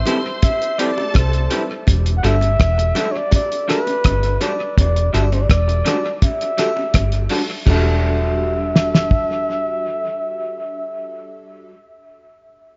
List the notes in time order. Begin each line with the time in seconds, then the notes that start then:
Already playing: C5 E5 C6
0.06 G3 C4 E4 G4 A4 B4, closed hi-hat, high bongo, low bongo
0.42 E5, kick, closed hi-hat, high bongo
0.62 closed hi-hat
0.78 G3 C4 E4 G4 A4 B4 D5 A5, closed hi-hat
0.97 G4, muted clean electric guitar stroke, high bongo
1.14 C2 C5, kick, cross-stick, closed hi-hat, high bongo
1.33 closed hi-hat
1.50 G3 C4 E4 G4 A4 B4, closed hi-hat, low bongo
1.87 E1, kick, closed hi-hat, high bongo
2.06 closed hi-hat
2.17 F#5
2.23 G1 G3 D4 F#4 G4 A4 E5, closed hi-hat
2.41 closed hi-hat, high bongo
2.60 E1, kick, cross-stick, closed hi-hat
2.78 muted clean electric guitar stroke, closed hi-hat
2.95 G3 D4 F#4 G4 A4, closed hi-hat, high bongo, low bongo
3.12 C#5
3.17 D5
3.31 D5, kick, closed hi-hat, high bongo
3.52 closed hi-hat
3.68 G3 D4 F#4 G4 A4 B4, cross-stick, closed hi-hat
3.87 G4 A4, muted clean electric guitar stroke, closed hi-hat, high bongo
4.04 G1, kick, cross-stick, closed hi-hat, high bongo
4.23 closed hi-hat
4.40 G3 D4 F#4 G4 A4 D5, closed hi-hat, low bongo
4.78 E1 D5, kick, closed hi-hat, high bongo
4.96 closed hi-hat
5.13 G1 G3 D4 F#4 G4 A4 E5, closed hi-hat
5.23 D5
5.32 C5, closed hi-hat, high bongo
5.42 D5
5.50 E1 D5, kick, cross-stick, closed hi-hat
5.68 muted clean electric guitar stroke, closed hi-hat
5.85 G3 D4 F#4 G4 A4, cross-stick, closed hi-hat, high bongo, low bongo
6.22 E5, kick, closed hi-hat, high bongo
6.41 closed hi-hat
6.58 G3 D4 F#4 G4 A4, cross-stick, closed hi-hat
6.76 G4 A4, muted clean electric guitar stroke, high bongo
6.94 G1, kick, cross-stick, closed hi-hat, high bongo
7.12 closed hi-hat
7.29 G3 D4 F#4 G4 A4, open hi-hat, low bongo
7.66 E1 G3 D4 F#4 G4 A4 E5, kick, crash, high bongo
7.71 A4
8.76 snare
8.95 snare
9.11 kick